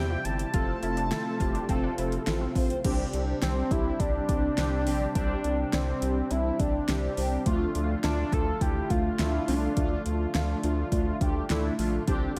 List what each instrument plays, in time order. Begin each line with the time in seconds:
Already playing: analog synth bass E2, analog synth pad C3 G3 E5, analog polysynth C4 E4 G4, analog synth lead G5
0.10 synth pluck F4
0.25 analog synth bass G1, analog polysynth C4 E4 G4, analog synth lead A5, closed hi-hat
0.39 closed hi-hat
0.54 analog synth bass F1, analog synth pad A3 F4, analog polysynth C4 F4 A4, synth pluck F4, kick, closed hi-hat
0.82 analog synth bass F1, analog polysynth C4 F4 A4, synth pluck E4, closed hi-hat
0.97 synth pluck D4, closed hi-hat
1.11 analog polysynth C4 F4 A4, synth pluck E4, snare, closed hi-hat
1.40 analog synth bass F1, analog polysynth C4 F4 G4, synth pluck F4, kick, closed hi-hat
1.55 synth pluck D4, closed hi-hat
1.69 analog synth bass F1, synth pluck C4, analog polysynth C4 F4 A4, kick, closed hi-hat
1.84 synth pluck D4
1.98 analog synth bass F1, analog polysynth C4 F4 A4, synth pluck E4, closed hi-hat
2.12 closed hi-hat
2.27 analog synth bass A1, analog polysynth C4 F4 A4, synth pluck E4, snare, closed hi-hat
2.41 synth pluck F4
2.55 analog synth bass A#1, analog polysynth C4 F4 C5, kick, open hi-hat
2.70 closed hi-hat
2.84 analog synth bass C2, analog synth pad C3 G3 D4, analog polysynth C4 D4 G4, kick, closed hi-hat, crash
3.13 analog synth bass C2, analog polysynth C4 D4 G4, closed hi-hat
3.42 analog synth bass C2, analog synth lead C4, analog polysynth C4 D4 G4, snare, closed hi-hat
3.71 analog synth bass C2, analog polysynth C4 D4 G4, analog synth lead E4, kick, closed hi-hat
4.00 analog synth bass C2, analog polysynth C4 D4 G4, analog synth lead D4, kick, closed hi-hat
4.29 analog synth bass C2, analog polysynth C4 D4 G4, kick, closed hi-hat
4.58 analog synth bass C2, analog polysynth C4 D4 G4, snare, closed hi-hat
4.86 analog synth bass A#1, analog polysynth C4 D4 G4, open hi-hat
5.15 analog synth bass C2, analog polysynth C4 D4 G4, analog synth lead D4, kick, closed hi-hat
5.44 analog synth bass C2, analog polysynth C4 D4 G4, closed hi-hat
5.73 analog synth bass C2, analog polysynth C4 D4 G4, analog synth lead C4, snare, closed hi-hat
6.02 analog synth bass C2, analog polysynth C4 D4 G4, closed hi-hat
6.31 analog synth bass C2, analog polysynth C4 D4 E4, analog synth lead E4, closed hi-hat
6.59 analog synth bass C2, analog polysynth C4 D4 G4, analog synth lead D4, kick, closed hi-hat
6.88 analog synth bass C2, analog polysynth C4 D4 G4, snare, closed hi-hat
7.17 analog synth bass C2, analog polysynth C4 D4 G4, open hi-hat
7.46 analog synth bass D2, analog synth pad D3 A3 F4, analog polysynth A3 D4 F4, kick, closed hi-hat
7.75 analog synth bass D2, analog polysynth A3 D4 F4, closed hi-hat
8.04 analog synth bass D2, analog polysynth A3 D4 F4, analog synth lead D4, snare, closed hi-hat
8.32 analog synth bass D2, analog polysynth A3 D4 F4, analog synth lead A4, kick, closed hi-hat
8.61 analog synth bass D2, analog polysynth A3 D4 E4, analog synth lead G4, kick, closed hi-hat
8.90 analog synth bass D2, analog polysynth A3 D4 F4, analog synth lead F4, kick, closed hi-hat
9.19 analog synth bass D2, analog polysynth A3 D4 F4, analog synth lead E4, snare, closed hi-hat
9.48 analog synth bass C2, analog polysynth A3 D4 F4, analog synth lead D4, open hi-hat
9.77 analog synth bass D2, analog polysynth A3 D4 F4, kick, closed hi-hat
10.05 analog synth bass D2, analog polysynth A3 D4 F4, closed hi-hat
10.34 analog synth bass D2, analog polysynth A3 D4 F4, snare, closed hi-hat
10.63 analog synth bass D2, analog polysynth A3 D4 F4, closed hi-hat
10.92 analog synth bass D2, analog polysynth A3 D4 F4, kick, closed hi-hat
11.21 analog synth bass D2, analog polysynth A3 D4 G4, kick, closed hi-hat
11.50 analog synth bass D2, analog polysynth A3 D4 E4, snare, closed hi-hat
11.79 analog synth bass A#1, analog polysynth A3 D4 F4, open hi-hat
12.08 analog synth bass C2, analog synth pad D3 C4 G4, analog polysynth C4 D4 G4, synth pluck D4, kick, closed hi-hat